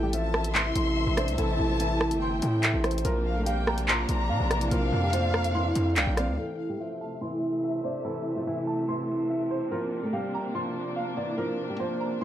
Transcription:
Already playing: 808-style bass A1, string section C3 A3 E5, grand piano A4, violin section G5
0.03 nylon-string guitar G3 G4
0.13 nylon-string guitar F3 F4, grand piano E5, violin section A5, closed hi-hat
0.34 grand piano A5, cross-stick
0.44 closed hi-hat
0.55 nylon-string guitar E3 E4, grand piano C6, violin section C6, clap
0.76 808-style bass A1, closed hi-hat
0.97 grand piano E5
1.07 808-style bass A1
1.17 nylon-string guitar D4 D5, grand piano C5, cross-stick, closed hi-hat
1.28 808-style bass C2, closed hi-hat
1.38 808-style bass A1, nylon-string guitar E3 E4, grand piano A4, violin section A5, closed hi-hat
1.59 808-style bass A1
1.69 nylon-string guitar F3 F4
1.80 nylon-string guitar E3 E4, grand piano E5, closed hi-hat
2.01 grand piano A5, cross-stick
2.11 808-style bass G1, closed hi-hat
2.21 nylon-string guitar E3 E4, violin section G5, grand piano C6
2.42 808-style bass A2, closed hi-hat
2.63 grand piano E5, clap, closed hi-hat
2.74 808-style bass A1
2.84 grand piano C5, cross-stick, closed hi-hat
2.91 closed hi-hat
2.98 closed hi-hat
3.05 808-style bass A#1, string section C3 A#3 D4, nylon-string guitar F3 F4, grand piano A#4, closed hi-hat
3.26 violin section F5
3.36 nylon-string guitar A3 A4
3.46 nylon-string guitar G3 G4, grand piano F5, violin section G5, closed hi-hat
3.67 grand piano A#5, cross-stick
3.78 closed hi-hat
3.88 nylon-string guitar F3 F4, violin section A#5, grand piano C6, clap
4.09 808-style bass A#1, closed hi-hat
4.29 808-style bass A#2, grand piano F5
4.40 808-style bass A#1
4.50 nylon-string guitar E3 E4, grand piano D5, cross-stick, closed hi-hat
4.61 closed hi-hat
4.71 808-style bass A#1, nylon-string guitar F3 F4, grand piano A#4, violin section F5, closed hi-hat
4.92 808-style bass F2
5.03 nylon-string guitar G3 G4
5.13 nylon-string guitar F3 F4, grand piano C5, closed hi-hat
5.34 grand piano A#5, cross-stick
5.44 closed hi-hat
5.55 nylon-string guitar E3 E4, grand piano C6
5.75 808-style bass F2, closed hi-hat
5.96 808-style bass C2, nylon-string guitar D4 D5, grand piano F5, violin section G5, clap, closed hi-hat
6.07 808-style bass A#1
6.17 nylon-string guitar C4 C5, grand piano D5, violin section F5, cross-stick, closed hi-hat
6.28 808-style bass D2
6.38 string section C3 A3 E5, nylon-string guitar E3 E4, grand piano A4
6.69 nylon-string guitar G3 G4
6.80 nylon-string guitar F3 F4, grand piano E5
7.01 grand piano A5
7.21 nylon-string guitar E3 E4, grand piano C6
7.63 grand piano E5
7.84 nylon-string guitar D4 D5, grand piano C5
8.04 nylon-string guitar E3 E4, grand piano A4
8.36 nylon-string guitar F3 F4
8.47 nylon-string guitar E3 E4, grand piano E5
8.67 grand piano A5
8.88 nylon-string guitar E3 E4, grand piano C6
9.29 grand piano E5
9.51 grand piano C5
9.71 nylon-string guitar F3 F4, string section A#3 D4, grand piano A#4
10.03 nylon-string guitar A3 A4
10.13 nylon-string guitar G3 G4, grand piano F5
10.34 grand piano A#5
10.55 nylon-string guitar F3 F4, grand piano C6
10.96 grand piano F5
11.17 nylon-string guitar E3 E4, grand piano D5
11.38 nylon-string guitar F3 F4, grand piano A#4
11.70 nylon-string guitar G3 G4
11.80 nylon-string guitar F3 F4, grand piano C5
12.00 grand piano A#5
12.21 grand piano C6

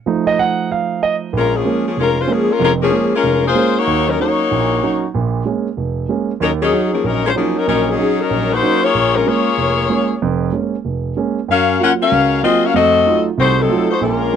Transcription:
0.06 grand piano F3 A3 D#4
0.27 grand piano D#5
0.39 grand piano F#5
0.72 grand piano F5
1.03 grand piano D#5
1.33 grand piano A#1
1.37 saxophone section G#3 C#4 F4 A#4
1.56 saxophone section F3 A#3 C#4 G#4
1.65 grand piano G#3 A#3 C#4
1.88 saxophone section F3 A#3 C#4 G#4
1.97 grand piano F1, saxophone section G#3 C#4 F4 A#4
2.21 saxophone section G#3 C#4 F4 C5
2.28 saxophone section F3 A#3 C#4, grand piano G#3 A#3 C#4
2.32 saxophone section G#4
2.51 saxophone section G#3 C#4 F4 A#4
2.60 grand piano F1 F2, saxophone section G#3 F4 A#4
2.64 saxophone section C#4
2.82 saxophone section F3 A#3 C#4 G#4
2.91 grand piano G#3 A#3 C#4
3.16 saxophone section G#3 C#4 F4 A#4
3.23 grand piano F1
3.46 saxophone section A#3 F4 G#4 C5
3.55 grand piano G#3 A#3 C#4
3.78 saxophone section A#3 D#4 F#4 C#5
3.87 grand piano D#2
4.09 saxophone section F#3 C#4 D#4 A#4
4.19 grand piano F#3 C#4 D#4, saxophone section A#3 D#4 F#4 C#5
4.51 grand piano A#1 A#2
4.82 grand piano F#3 C#4 D#4
5.14 grand piano A#1 A#2
5.45 grand piano G#3 A#3 C#4
5.77 grand piano F1
6.09 grand piano G#3 A#3 C#4
6.40 grand piano D#2, saxophone section F#3 C#4 D#4 A#4
6.62 saxophone section F#3 C#4 D#4 G#4
6.72 grand piano F#3 C#4 D#4
6.94 saxophone section F3 A#3 C#4 G#4
7.04 grand piano A#1, saxophone section F#3 C#4 D#4 A#4
7.26 saxophone section G#3 C#4 F4 C5
7.35 saxophone section F3 A#3 C#4 G#4, grand piano F#3 C#4 D#4
7.57 saxophone section F#3 C#4 D#4 A#4
7.67 grand piano A#1 A#2, saxophone section F#3 C#4 D#4 A#4
7.89 saxophone section F#3 C#4 D#4 G#4
7.98 grand piano F#3 C#4 D#4
8.21 saxophone section F#3 C#4 D#4 A#4
8.30 grand piano A#1
8.53 saxophone section A#3 D#4 F#4 C5
8.62 grand piano F#3 C#4 D#4
8.83 saxophone section A#3 F4 G#4 C#5
8.94 grand piano A#1
9.16 saxophone section G#3 C#4 F4 A#4
9.26 grand piano G#3 A#3 C#4, saxophone section A#3 F4 G#4 C#5
9.57 grand piano F1
9.90 grand piano G#3 A#3 C#4
10.22 grand piano F1 F2
10.52 grand piano G#3 A#3 C#4
10.85 grand piano F1
11.17 grand piano G#3 A#3 C#4
11.48 grand piano F#2, saxophone section C#4 F#4 A#4 F5
11.80 grand piano F#3 A#3 F4, saxophone section C#4 F4 A#4 F#5
12.02 saxophone section C#4 F#4 A#4 F5
12.11 grand piano C#2
12.43 grand piano F#3 A#3 F4, saxophone section C4 F4 G#4 D#5
12.64 saxophone section C#4 F#4 A#4 F5
12.74 grand piano F2 A3, saxophone section C4 F#4 A4 D#5
13.06 grand piano F#3 A3 D#4 F4
13.37 grand piano C2 C3, saxophone section A3 D#4 F#4 C5
13.59 saxophone section F#3 C4 D#4 A4
13.69 grand piano F#3 A3 D#4 F4
13.91 saxophone section A3 D#4 F#4 C5
14.01 grand piano A#1 A#2, saxophone section G#3 C#4 F4 A#4

